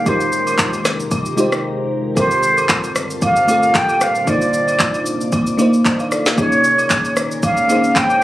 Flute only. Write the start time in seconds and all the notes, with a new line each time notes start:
0.07 C5
2.18 C5
3.23 F5
3.76 G5
4.02 F5
4.29 D5
6.39 C#5
7.44 F5
7.97 G5